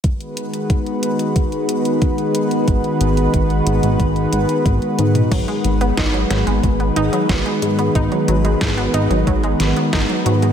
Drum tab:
CC |----------------|----------------|x---------------|----------------|
HH |xxxxxxxxxxxxxxxx|xxxxxxxxxxxxxxxx|xxxxxxxxxxxxxxxx|xxxxxxxxxxxxxxxx|
SD |----------------|----------------|----o-o-----o---|----o-----o-o---|
T1 |----------------|--------------o-|----------------|----------------|
T2 |----------------|---------------o|----------------|----------------|
BD |o---o---o---o---|o---o---o---o---|o---o---o---o---|o---o---o---o---|